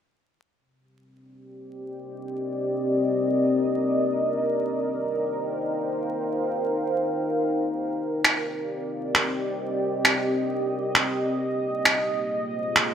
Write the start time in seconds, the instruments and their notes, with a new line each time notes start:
0.58 ambient pad C4
0.78 ambient pad G4
0.99 ambient pad A#4 D5
1.47 ambient pad D#5
4.19 ambient pad D#4
4.59 ambient pad G5
4.67 ambient pad C5
4.91 ambient pad F5
7.80 ambient pad C4
7.88 ambient pad G4 D5
8.12 ambient pad D#5
8.25 finger snap
9.15 finger snap
10.05 finger snap
10.95 finger snap
11.40 ambient pad A#3
11.57 ambient pad G#4 C5
11.63 ambient pad F4
11.85 finger snap
12.76 finger snap